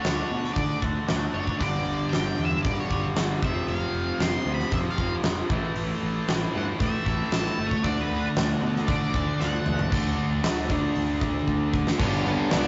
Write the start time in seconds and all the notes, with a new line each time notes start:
Already playing: D3 A3 D4
0.02 D2 D3 A3 C#5, snare, open hi-hat
0.07 D4 F#4
0.30 B2 A3 D4 F#4
0.44 snare
0.53 D3 D5, kick, open hi-hat
0.81 D2 D3 A3 D4 F#4, kick
0.86 A3
1.07 D2 D3 A3 D4, snare, open hi-hat
1.12 F#4
1.34 F#1 C#5
1.47 kick
1.58 G1 G2 D3 G3 D5, kick, open hi-hat
1.86 G1
2.09 G1 G5, open hi-hat
2.13 snare
2.39 E2
2.44 E5
2.62 G2 D3 D5, kick, open hi-hat
2.68 G3
2.80 C#5
2.90 G1 G2 D3 G3, kick
3.16 G1 G2 D3 G3, snare, open hi-hat
3.43 F1 F2 C3 F3 E5, kick
3.68 F1 F5, open hi-hat
3.93 F1
4.19 F1 C6, snare, open hi-hat
4.45 D2 F2 C3 F3
4.54 B5
4.59 snare
4.71 F2 C3 F3 E5, kick, open hi-hat
4.90 F5
4.98 F1 F2 C3 F3, kick
5.23 F1, snare, open hi-hat
5.49 A1 A2 E3 A3, kick
5.75 A1, open hi-hat
6.03 A1
6.28 A1, snare, open hi-hat
6.55 G2 A2 E3 A3 F#5
6.79 A2 E3 A3, kick, open hi-hat
6.83 E5
7.05 A1 A2 E3 A3, kick
7.32 A1 A5, snare, open hi-hat
7.46 snare
7.58 G1
7.67 C#5
7.71 kick
7.83 D2 D3 A3 D4 D5, kick, open hi-hat
8.01 B4
8.10 D2
8.36 D2, snare, open hi-hat
8.62 B2
8.76 snare
8.87 D3 A3 D5, kick, open hi-hat
8.92 D4
9.14 D2 D3 A3 D4, kick
9.40 D2 D3 A3 D4 F#5, snare
9.66 B1, mid tom
9.79 floor tom
9.91 D2 D3 A3 D4, kick, crash
10.18 D2
10.44 D2, snare, open hi-hat
10.70 D3 A3 D4, kick
10.95 D2, open hi-hat
11.21 kick
11.48 D2, kick
11.74 kick
11.87 snare
11.98 G1 G2 D3 G3 B3 C#4 D4, kick, crash
12.22 G2 D3 G3 B3 D4, crash
12.27 D4
12.49 C#2 G2 D3 G3 B3 D4, snare, crash